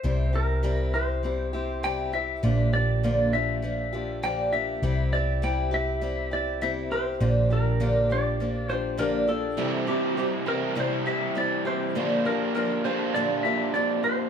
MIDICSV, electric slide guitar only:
0, 0, Header, 1, 2, 480
1, 0, Start_track
1, 0, Tempo, 595829
1, 35, Time_signature, 4, 2, 24, 8
1, 11516, End_track
2, 0, Start_track
2, 0, Title_t, "Electric slide guitar"
2, 0, Program_c, 0, 29
2, 0, Note_on_c, 0, 72, 83
2, 286, Note_on_c, 0, 70, 73
2, 291, Note_off_c, 0, 72, 0
2, 731, Note_off_c, 0, 70, 0
2, 756, Note_on_c, 0, 72, 71
2, 1483, Note_on_c, 0, 79, 89
2, 1502, Note_off_c, 0, 72, 0
2, 1706, Note_off_c, 0, 79, 0
2, 1721, Note_on_c, 0, 76, 95
2, 2200, Note_off_c, 0, 76, 0
2, 2203, Note_on_c, 0, 74, 88
2, 2653, Note_off_c, 0, 74, 0
2, 2685, Note_on_c, 0, 76, 85
2, 3374, Note_off_c, 0, 76, 0
2, 3413, Note_on_c, 0, 79, 83
2, 3646, Note_on_c, 0, 76, 83
2, 3657, Note_off_c, 0, 79, 0
2, 4129, Note_off_c, 0, 76, 0
2, 4132, Note_on_c, 0, 74, 83
2, 4377, Note_off_c, 0, 74, 0
2, 4382, Note_on_c, 0, 79, 85
2, 4598, Note_off_c, 0, 79, 0
2, 4625, Note_on_c, 0, 76, 90
2, 5097, Note_off_c, 0, 76, 0
2, 5100, Note_on_c, 0, 74, 80
2, 5331, Note_off_c, 0, 74, 0
2, 5334, Note_on_c, 0, 76, 80
2, 5397, Note_off_c, 0, 76, 0
2, 5573, Note_on_c, 0, 72, 77
2, 6060, Note_off_c, 0, 72, 0
2, 6063, Note_on_c, 0, 70, 71
2, 6501, Note_off_c, 0, 70, 0
2, 6543, Note_on_c, 0, 74, 76
2, 7006, Note_on_c, 0, 72, 87
2, 7027, Note_off_c, 0, 72, 0
2, 7027, Note_off_c, 0, 74, 0
2, 7027, Note_on_c, 0, 72, 76
2, 7220, Note_off_c, 0, 72, 0
2, 7244, Note_on_c, 0, 70, 83
2, 7466, Note_off_c, 0, 70, 0
2, 7481, Note_on_c, 0, 69, 83
2, 7955, Note_off_c, 0, 69, 0
2, 7958, Note_on_c, 0, 67, 74
2, 8189, Note_off_c, 0, 67, 0
2, 8199, Note_on_c, 0, 67, 78
2, 8263, Note_off_c, 0, 67, 0
2, 8445, Note_on_c, 0, 70, 83
2, 8665, Note_off_c, 0, 70, 0
2, 8700, Note_on_c, 0, 72, 92
2, 8916, Note_on_c, 0, 76, 90
2, 8935, Note_off_c, 0, 72, 0
2, 9163, Note_off_c, 0, 76, 0
2, 9167, Note_on_c, 0, 74, 85
2, 9397, Note_off_c, 0, 74, 0
2, 9400, Note_on_c, 0, 72, 90
2, 9845, Note_off_c, 0, 72, 0
2, 9879, Note_on_c, 0, 70, 87
2, 10100, Note_off_c, 0, 70, 0
2, 10114, Note_on_c, 0, 70, 82
2, 10337, Note_off_c, 0, 70, 0
2, 10352, Note_on_c, 0, 72, 80
2, 10575, Note_off_c, 0, 72, 0
2, 10589, Note_on_c, 0, 74, 106
2, 10814, Note_off_c, 0, 74, 0
2, 10820, Note_on_c, 0, 76, 91
2, 11064, Note_off_c, 0, 76, 0
2, 11067, Note_on_c, 0, 74, 88
2, 11292, Note_off_c, 0, 74, 0
2, 11310, Note_on_c, 0, 72, 96
2, 11516, Note_off_c, 0, 72, 0
2, 11516, End_track
0, 0, End_of_file